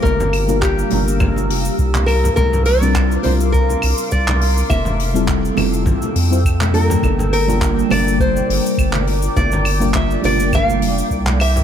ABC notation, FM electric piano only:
X:1
M:4/4
L:1/16
Q:"Swing 16ths" 1/4=103
K:Gdor
V:1 name="FM electric piano"
[G,B,DFB]3 [G,B,DFB]3 [G,B,DFB]8 z2 | z3 [G,CDFB]3 [G,CDFB]8- [G,CDFB]2 | z3 [G,CEFA]3 [G,CEFA]4- [G,CEFA] [G,CEFc] z2 [G,B,DFB]2- | [G,B,DFB]3 [G,B,DFB]3 [G,B,DFB]8- [G,B,DFB]2- |
[G,B,DFB]3 [G,B,DFB]3 [G,B,DFB]8 z2 |]